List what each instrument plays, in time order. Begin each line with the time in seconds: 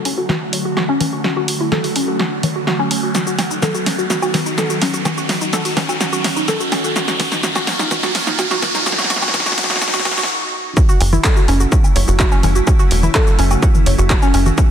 Already playing: ambient pad D3 F#3 A3 F#4, riser
0.05 synth pluck C#4, open hi-hat
0.18 synth pluck F#4
0.29 synth pluck F#4, snare, low conga
0.53 synth pluck C#5, open hi-hat
0.65 synth pluck F#4
0.77 synth pluck F#4, snare
0.89 synth pluck C#4
1.01 synth pluck C#4, open hi-hat, low conga
1.13 synth pluck F#4
1.24 synth pluck F#4, snare
1.37 synth pluck F#4
1.48 open hi-hat
1.60 synth pluck E4
1.72 synth pluck A4, snare, low conga
1.84 synth pluck F#4, open hi-hat
1.96 synth pluck C#4, open hi-hat
2.08 synth pluck F#4
2.19 synth pluck F#4, snare
2.43 synth pluck C#5, open hi-hat, low conga
2.56 synth pluck F#4
2.67 synth pluck F#4, snare
2.79 synth pluck C#4
2.91 synth pluck C#4, open hi-hat
3.03 synth pluck F#4
3.15 ambient pad D#3 F#3 B3, synth pluck F#4, snare, shaker
3.27 synth pluck F#4, shaker
3.39 snare, open hi-hat, low woodblock, shaker
3.51 synth pluck D#4, shaker
3.62 synth pluck A4, snare, low conga, shaker
3.75 synth pluck F#4, shaker
3.86 synth pluck C#4, snare, open hi-hat, shaker
3.98 synth pluck F#4, shaker
4.10 synth pluck F#4, snare, shaker
4.22 synth pluck F#4, low woodblock, shaker
4.34 snare, open hi-hat, low conga, shaker
4.46 synth pluck D#4, shaker
4.58 synth pluck A4, snare, shaker
4.70 synth pluck F#4, shaker
4.82 synth pluck C#4, snare, open hi-hat, shaker
4.94 synth pluck F#4, shaker
5.05 ambient pad C#4, synth pluck F#4, snare, low conga, low woodblock, shaker
5.18 synth pluck F#4, shaker
5.29 snare, open hi-hat, shaker
5.41 synth pluck D#4, shaker
5.53 synth pluck A4, snare, shaker
5.65 synth pluck F#4, open hi-hat, shaker
5.77 synth pluck C#4, snare, open hi-hat, low conga, shaker
5.89 synth pluck F#4, low woodblock, shaker
6.00 synth pluck F#4, snare, shaker
6.13 synth pluck F#4, shaker
6.24 snare, open hi-hat, shaker
6.36 synth pluck D#4, shaker
6.48 synth pluck A4, snare, low conga, shaker
6.60 synth pluck F#4, shaker
6.72 synth pluck C#4, snare, open hi-hat, low woodblock, shaker
6.84 synth pluck F#4, shaker
6.96 ambient pad F#3 A#3 F4, synth pluck F#4, snare, shaker
7.08 synth pluck F#4, snare, shaker
7.20 snare, open hi-hat, low conga, shaker
7.32 synth pluck D#4, snare, shaker
7.43 synth pluck F#4, snare, shaker
7.55 synth pluck F#4, snare, low woodblock, shaker
7.67 snare, open hi-hat, shaker
7.79 synth pluck D#4, snare, shaker
7.91 synth pluck F#4, snare, low conga, shaker
8.03 synth pluck F#4, snare, shaker
8.15 snare, open hi-hat, shaker
8.27 synth pluck D#4, snare, shaker
8.39 synth pluck F#4, snare, low woodblock, shaker
8.51 synth pluck F#4, snare, shaker
8.62 snare, open hi-hat, low conga, shaker
8.74 synth pluck D#4, snare, shaker
8.86 ambient pad D#4, synth pluck F#4, snare, shaker
8.92 snare
8.98 synth pluck F#4, snare, shaker
9.04 snare
9.10 synth pluck F#4, snare, open hi-hat, shaker
9.16 snare
9.22 synth pluck F#4, snare, low woodblock, shaker
9.28 snare
9.34 synth pluck F#4, snare, low conga, shaker
9.40 snare
9.46 synth pluck F#4, snare, open hi-hat, shaker
9.52 snare
9.58 synth pluck F#4, snare, open hi-hat, shaker
9.64 snare
9.70 synth pluck F#4, snare, shaker
9.76 snare
9.81 synth pluck F#4, snare, shaker
9.88 snare
9.94 synth pluck F#4, snare, shaker
9.99 snare
10.05 synth pluck F#4, snare, open hi-hat, low conga, low woodblock, shaker
10.11 snare
10.18 synth pluck F#4, snare, shaker
10.23 snare
10.77 ambient pad C#3 F#3 A3 E4, synth pluck F#4, kick, shaker
10.89 synth pluck F#4, shaker
11.01 analog synth bass F#1, open hi-hat, low woodblock
11.13 synth pluck E4, low conga, shaker
11.24 synth pluck A4, kick, clap, shaker
11.37 synth pluck F#4, shaker
11.48 analog synth bass F#1, synth pluck C#4, open hi-hat
11.60 synth pluck F#4, shaker
11.72 synth pluck F#4, kick, shaker
11.84 low woodblock, shaker
11.96 analog synth bass F#1, synth pluck C#5, open hi-hat, shaker
12.08 analog synth bass F#1, synth pluck F#4, shaker
12.20 synth pluck F#4, kick, clap, shaker
12.32 synth pluck C#4, shaker
12.43 analog synth bass F#1, synth pluck C#4, open hi-hat, low conga, shaker
12.55 synth pluck F#4, shaker
12.67 synth pluck F#4, kick, low woodblock, shaker
12.79 synth pluck F#4, shaker
12.91 analog synth bass E1, open hi-hat
13.03 synth pluck E4, low conga, shaker
13.15 synth pluck A4, kick, clap, shaker
13.27 synth pluck F#4, shaker
13.39 analog synth bass F#1, synth pluck C#4, open hi-hat, shaker
13.51 synth pluck F#4, low woodblock, shaker
13.63 synth pluck F#4, kick, shaker
13.75 low conga, shaker
13.86 analog synth bass F#1, synth pluck C#5, open hi-hat, shaker
13.98 analog synth bass F#1, synth pluck F#4, shaker
14.10 synth pluck F#4, kick, clap, shaker
14.22 synth pluck C#4, shaker
14.34 analog synth bass F#1, synth pluck C#4, open hi-hat, low woodblock, shaker
14.46 synth pluck F#4, low conga, shaker
14.58 ambient pad D3 F#4, synth pluck F#4, kick, shaker